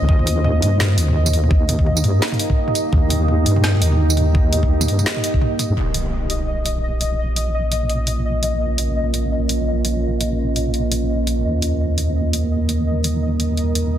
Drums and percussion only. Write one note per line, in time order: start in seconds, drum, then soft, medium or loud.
0.09 kick loud
0.19 mid tom soft
0.27 closed hi-hat medium
0.44 mid tom medium
0.62 closed hi-hat medium
0.62 mid tom medium
0.80 snare loud
0.80 mid tom medium
0.98 closed hi-hat medium
0.98 tambourine soft
1.08 mid tom medium
1.26 mid tom medium
1.26 tambourine medium
1.33 closed hi-hat medium
1.44 mid tom medium
1.51 kick loud
1.69 closed hi-hat medium
1.69 mid tom medium
1.79 kick medium
1.87 mid tom medium
1.97 tambourine medium
2.04 closed hi-hat medium
2.04 mid tom soft
2.22 snare loud
2.22 closed hi-hat soft
2.28 closed hi-hat soft
2.32 closed hi-hat soft
2.32 mid tom medium
2.39 closed hi-hat medium
2.50 kick medium
2.50 mid tom medium
2.68 mid tom medium
2.75 closed hi-hat medium
2.75 tambourine soft
2.93 kick loud
2.93 mid tom medium
3.10 closed hi-hat medium
3.10 mid tom medium
3.28 mid tom medium
3.46 closed hi-hat medium
3.56 mid tom medium
3.64 snare loud
3.74 mid tom medium
3.82 closed hi-hat medium
3.82 tambourine soft
3.92 mid tom medium
4.10 tambourine medium
4.17 closed hi-hat medium
4.17 mid tom medium
4.35 kick loud
4.35 mid tom medium
4.53 closed hi-hat medium
4.53 mid tom medium
4.63 kick medium
4.81 mid tom medium
4.81 tambourine medium
4.88 closed hi-hat medium
4.99 mid tom medium
4.99 tambourine soft
5.06 snare loud
5.06 closed hi-hat soft
5.16 mid tom medium
5.24 closed hi-hat medium
5.34 kick medium
5.42 mid tom medium
5.59 closed hi-hat medium
5.59 mid tom medium
5.59 tambourine soft
5.94 closed hi-hat medium
6.30 closed hi-hat medium
6.66 closed hi-hat medium
7.01 closed hi-hat medium
7.36 closed hi-hat medium
7.72 closed hi-hat medium
7.90 closed hi-hat soft
8.07 closed hi-hat medium
8.43 closed hi-hat medium
8.78 closed hi-hat medium
9.14 closed hi-hat medium
9.49 closed hi-hat medium
9.85 closed hi-hat medium
10.21 closed hi-hat medium
10.56 closed hi-hat medium
10.74 closed hi-hat soft
10.92 closed hi-hat medium
11.27 closed hi-hat medium
11.62 closed hi-hat medium
11.98 closed hi-hat medium
12.33 closed hi-hat medium
12.69 closed hi-hat medium
13.04 closed hi-hat medium
13.40 closed hi-hat medium
13.57 closed hi-hat soft
13.75 closed hi-hat medium